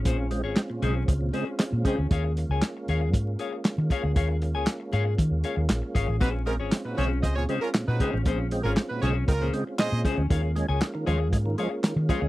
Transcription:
<<
  \new Staff \with { instrumentName = "Clean electric guitar" } { \time 4/4 \key bes \dorian \tempo 4 = 117 <des' aes' c''>8 r16 <des' aes' des''>16 r8 <des' aes' c''>8 r8 <des' aes' c''>16 r8. <des' aes' c''>8 | <aes' des'' f''>8 r16 <aes' des'' aes''>16 r8 <aes' des'' f''>8 r8 <aes' des'' f''>16 r8. <aes' des'' f''>8 | <aes' des'' f''>8 r16 <aes' des'' aes''>16 r8 <aes' des'' f''>8 r8 <aes' des'' f''>16 r8. <aes' des'' f''>8 | <des' aes' c''>8 r16 <des' aes' des''>16 r8 <des' aes' c''>8 r8 <des' aes' c''>16 r8. <des' aes' c''>8 |
<des' aes' c''>8 r16 <des' aes' des''>16 r8 <des' aes' c''>8 r16 <des' aes' c''>8 r8. <des' aes' c''>8 | <aes' des'' f''>8 r16 <aes' des'' aes''>16 r8 <aes' des'' f''>8 r8 <aes' des'' f''>16 r8. <aes' des'' f''>8 | }
  \new Staff \with { instrumentName = "Horn section" } { \time 4/4 \key bes \dorian r1 | r1 | r1 | <ees' ges' ces''>16 r16 <des' f' bes'>16 r8 <ees' ges' ces''>16 <f' aes' des''>16 r16 <aes' c'' ees''>16 <f' aes' des''>16 r16 <des' f' bes'>16 r16 <ees' ges' ces''>8 r16 |
r8. <des' f' bes'>16 r16 <ees' ges' ces''>16 <f' aes' des''>16 r16 <des' f' bes'>8 r8 <aes' c'' ees''>8 r8 | r1 | }
  \new Staff \with { instrumentName = "Tonewheel organ" } { \time 4/4 \key bes \dorian <aes des' f'>1~ | <aes des' f'>1~ | <aes des' f'>1~ | <aes des' f'>1~ |
<aes des' f'>1 | <aes des' f'>1 | }
  \new Staff \with { instrumentName = "Tonewheel organ" } { \time 4/4 \key bes \dorian c'1 | bes1~ | bes1 | c'1~ |
c'1 | bes1 | }
  \new Staff \with { instrumentName = "Tonewheel organ" } { \clef bass \time 4/4 \key bes \dorian bes,16 r16 <aes c'>16 r16 <aes c'>16 bes,16 <des aes c'>16 r16 <aes c'>16 bes,16 <des aes c'>16 r16 <aes c'>16 bes,16 <des aes c'>16 r16 | r1 | r1 | bes,16 r16 <aes c'>16 r16 <aes c'>16 bes,16 <des aes c'>16 r16 <aes c'>16 bes,16 <des aes c'>16 r16 bes,16 r16 <des aes c'>16 <aes c'>16 |
bes,16 r16 <aes c'>16 r16 <aes c'>16 bes,16 <des aes c'>16 r16 <aes c'>16 bes,16 <des aes c'>16 r16 bes,16 r16 <des aes c'>16 <aes c'>16 | ees16 r16 <aes des'>16 r16 <aes des'>16 ees16 <f aes des'>16 r16 <aes des'>16 ees16 <f aes des'>16 r16 ees16 r16 <f aes des'>16 <aes des'>16 | }
  \new Staff \with { instrumentName = "Fingered electric bass" } { \clef bass \time 4/4 \key bes \dorian bes,,8. aes,,16 r8 ces,8 des,8 r8. bes,16 r16 d,16 | ees,8. des,16 r8 ees,8 aes,8 r8. ees16 r16 d,16 | ees,8. des,16 r8 aes,8 ees16 ees,16 r16 ees,16 bes,,16 r16 aes,,16 a,,16 | bes,,8. aes,,16 r8 ces,8 des,8 r8. bes,16 r16 a,,16 |
bes,,8. aes,,16 r8 ces,8 des,8 r8. bes,16 r16 d,16 | ees,8. des,16 r8 ees,8 aes,8 r8. ees16 r16 d,16 | }
  \new DrumStaff \with { instrumentName = "Drums" } \drummode { \time 4/4 <hh bd>8 hh8 <hc hh sn>8 hh8 <hh bd>8 hh8 <hc hh sn>8 <hh bd>8 | <hh bd>8 hh8 <hc hh sn>8 hh8 <hh bd>8 hh8 <hc hh sn>8 <hh bd>8 | <hh bd>8 hh8 <hc hh sn>8 hh8 <hh bd>8 hh8 <hc hh sn>8 <hh bd>8 | <hh bd>8 hh8 <hc hh sn>8 hh8 <hh bd>8 hh8 <hc hh sn>8 <hh bd>8 |
<hh bd>8 hh8 <hc hh sn>8 hh8 <hh bd>8 hh8 <hc hh sn>8 <hh bd>8 | <hh bd>8 hh8 <hc hh sn>8 hh8 <hh bd>8 hh8 <hc hh sn>8 <hh bd>8 | }
>>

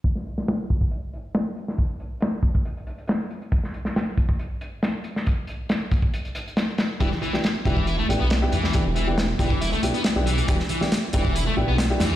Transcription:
<<
  \new Staff \with { instrumentName = "Grand piano" } { \time 4/4 \key e \minor \tempo 4 = 138 r1 | r1 | r1 | r1 |
<b d' e' g'>16 r8 <b d' e' g'>16 r8 <b d' e' g'>16 r8. <b d' e' g'>16 r8 <b d' e' g'>16 r8 | <b d' e' g'>16 r8 <b d' e' g'>16 r8 <b d' e' g'>16 r8. <b d' e' g'>16 r8 <b d' e' g'>16 r8 | <b d' e' g'>16 r8 <b d' e' g'>16 r8 <b d' e' g'>16 r8. <b d' e' g'>16 r8 <b d' e' g'>16 r8 | }
  \new Staff \with { instrumentName = "Distorted electric guitar" } { \clef bass \time 4/4 \key e \minor r1 | r1 | r1 | r1 |
e16 r16 e16 r8. e8 e'16 a16 r16 b16 r8 e8 | e16 r16 e16 r8. e8 e'16 a16 r16 b16 r8 e8 | e16 r16 e16 r8. e8 e'16 a16 r16 b16 r8 e8 | }
  \new Staff \with { instrumentName = "Detuned saw bass" } { \clef bass \time 4/4 \key e \minor r1 | r1 | r1 | r1 |
e,,16 r4 r16 e,,8. r16 a,,16 b,,8 r16 e,16 r16 | e,,16 e,,4 r16 e,,16 r16 e,,16 r16 b,,16 r8 b,,8 r16 | e,,16 r4 r16 e,,8. r16 a,,16 b,,8 r16 e,16 r16 | }
  \new DrumStaff \with { instrumentName = "Drums" } \drummode { \time 4/4 <hh bd>16 sn16 hh16 sn16 <hh sn>8 <hh bd>16 bd16 hh8 hh8 <hh sn>8 hh16 sn16 | <hh bd>8 hh8 <hh sn>8 <hh bd>16 bd16 hh16 hh16 hh16 hh16 <hh sn>8 hh16 hh16 | <hh bd>16 sn16 hh16 sn16 <hh sn>8 <hh bd>16 bd16 hh8 hh8 <hh sn>8 hh16 sn16 | <hh bd>8 hh8 <hh sn>8 <hh bd>16 bd16 hh16 hh16 hh16 hh16 <hh sn>8 <hh sn>8 |
<hh bd>16 sn16 hh16 sn16 <hh sn>8 <hh bd>16 bd16 hh8 hh8 <hh sn>8 hh16 sn16 | <hh bd>8 hh8 <hh sn>8 <hh bd>16 bd16 hh16 hh16 hh16 hh16 <hh sn>8 hh16 hh16 | <hh bd>16 sn16 hh16 sn16 <hh sn>8 <hh bd>16 bd16 hh4 <hh sn>8 <hh sn>8 | }
>>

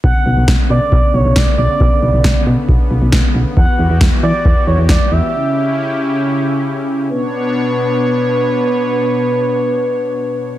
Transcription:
<<
  \new Staff \with { instrumentName = "Analog synth lead" } { \time 4/4 \key b \minor \tempo 4 = 136 fis''4 r8 d''4 cis''8 d''8 d''8~ | d''4. r2 r8 | fis''4 r8 d''4 cis''8 d''8 e''8~ | e''4. r2 r8 |
b'1~ | b'1 | }
  \new Staff \with { instrumentName = "Analog synth pad" } { \time 4/4 \key b \minor << { <d b>1~ | <d b>1 | <e fis'>1 | <cis cis' e'>1 |
<b, b d' cis''>1~ | <b, b d' cis''>1 | } \\ { cis1~ | cis1 | g'1~ | g'1 |
r1 | r1 | } >> }
  \new Staff \with { instrumentName = "FM bass" } { \clef bass \time 4/4 \key b \minor b,,16 r16 b,,16 b,,16 b,,16 r16 b,16 r16 b,,16 r16 b,,16 b,,16 b,,16 r16 b,,16 r16 | b,,16 r16 b,,16 b,,16 b,,16 r16 b,16 r16 b,,16 r16 b,,16 b,,16 b,,16 r16 b,,16 r16 | e,16 r16 e,16 e,16 e,16 r16 e16 r16 e,16 r16 e,16 e,16 e,16 r16 e,16 r16 | r1 |
r1 | r1 | }
  \new DrumStaff \with { instrumentName = "Drums" } \drummode { \time 4/4 bd4 <bd sn>4 bd4 <bd sn>4 | bd4 <bd sn>4 bd4 <bd sn>4 | bd4 <bd sn>4 bd4 <bd sn>4 | r4 r4 r4 r4 |
r4 r4 r4 r4 | r4 r4 r4 r4 | }
>>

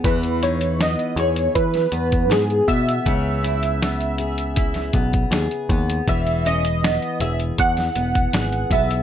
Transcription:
<<
  \new Staff \with { instrumentName = "Synth keys" } { \time 4/4 \key e \major \tempo 4 = 80 b'8 cis''8 dis''8 cis''8 b'4 gis'8 e''8~ | e''2~ e''8 r4. | e''8 dis''4 e''8 fis''4. e''8 | }
  \new Staff \with { instrumentName = "Nylon-string guitar" } { \time 4/4 \key e \major e8 dis'8 b8 gis'4 b8 gis'8 b8 | cis8 e'8 b8 gis'8 e'8 b8 gis'8 b8 | e8 cis'16 r16 b8 gis'4 b8 gis'8 b8 | }
  \new Staff \with { instrumentName = "Picked electric bass" } { \clef bass \time 4/4 \key e \major e,4~ e,16 r16 e,8 e8 e,8 gis,8 b,8 | cis,2~ cis,8 b,,8 dis,16 r16 dis,8 | e,,4~ e,,16 r16 e,,8 e,8 e,,8 gis,,8 b,,8 | }
  \new DrumStaff \with { instrumentName = "Drums" } \drummode { \time 4/4 <hh bd>16 hh16 hh16 hh16 <hh sn>16 hh16 hh16 hh16 <hh bd>16 <hh sn>16 hh16 <hh bd>16 <hh sn>16 hh16 <hh bd>16 hh16 | <hh bd>8 hh16 hh16 <hh sn>16 hh16 hh16 hh16 <hh bd>16 <hh sn>16 <hh bd>16 <hh bd>16 <hh sn>16 hh16 <hh bd>16 hh16 | <hh bd>16 hh16 hh16 hh16 <hh sn>16 hh16 hh16 hh16 <hh bd>16 <hh sn>16 hh16 <hh bd>16 <hh sn>16 hh16 <hh bd>16 hh16 | }
>>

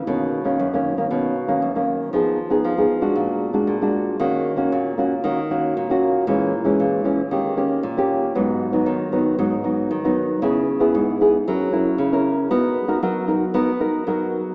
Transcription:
\new Staff \with { instrumentName = "Nylon-string guitar" } { \time 4/4 \key ees \minor \tempo 4 = 116 << { <dis ais cis'>8. <dis ais cis'>8 <dis ais cis'>8 <dis ais cis'>16 <dis ais cis'>8 r16 <dis ais cis'>8 <dis ais cis'>8. | <ces' ees' aes'>8 r16 <ces' ees' aes'>8 <ces' ees' aes'>8 <aes d' ges'>4 <aes d' fis'>8 <aes d' fis'>8. | <bes des' ges'>8. <bes des' ges'>8. <bes des' ges'>16 r16 <bes des' ges'>16 r16 <bes des' ges'>8. <bes des' ges'>8. | <fes aes des'>8 r16 <fes aes des'>8. <fes aes des'>16 r16 <bes des' g'>8 <bes des' g'>8 r16 <bes des' g'>8. |
<ges ces' ees'>8. <ges ces' ees'>8. <ges ces' ees'>8 <ges ces' ees'>16 r16 <ges ces' ees'>8. <ges ces' ees'>8. | <ces' fes' aes'>8 r16 <ces' fes' aes'>8. <ces' fes' aes'>16 r16 <des' fes' bes'>8 <des' fes' bes'>8. <des' fes' bes'>8. | <dis' fis' ais'>8. <dis' fis' ais'>16 <dis' fis' ais'>8 <dis' fis' ais'>16 r16 <dis' fis' ais'>16 r16 <dis' fis' ais'>8 <dis' fis' ais'>8. r16 | } \\ { b,4 fis,4 b,4 fis,4 | f4 f4 bes,4 bes,4 | ees4 bes,4 ees4 bes,4 | bes,4 bes,4 ees4 bes,4 |
aes,4 ees4 aes,4 ees4 | des4 aes,4 ges4 des4 | b4 fis4 b4 fis4 | } >> }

